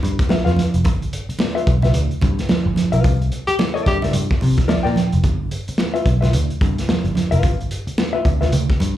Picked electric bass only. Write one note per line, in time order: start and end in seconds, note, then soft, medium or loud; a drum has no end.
0.03 0.17 G2 loud
0.30 muted picked electric bass stroke soft
0.46 0.56 F2 medium
0.74 0.85 F1 medium
0.85 1.09 G1 loud
1.29 muted picked electric bass stroke soft
1.67 1.91 B1 medium
1.94 2.09 D2 loud
2.23 2.37 G2 loud
2.49 muted picked electric bass stroke soft
2.66 2.76 G1 loud
2.93 3.03 B1 loud
3.05 3.28 C2 loud
3.48 muted picked electric bass stroke medium
3.87 4.11 G2 medium
4.14 4.28 G2 loud
4.42 4.56 C3 loud
4.70 muted picked electric bass stroke soft
4.86 4.95 A#2 medium
5.13 5.23 F1 medium
5.24 5.48 G1 loud
5.69 muted picked electric bass stroke soft
6.06 6.30 B1 loud
6.33 6.48 D2 loud
6.61 6.75 G2 loud
6.88 muted picked electric bass stroke soft
7.04 7.14 G1 medium
7.32 7.42 F1 medium
7.43 7.67 G1 loud
7.87 muted picked electric bass stroke soft
8.25 8.49 D2 loud
8.53 8.67 D2 loud
8.80 8.95 G2 loud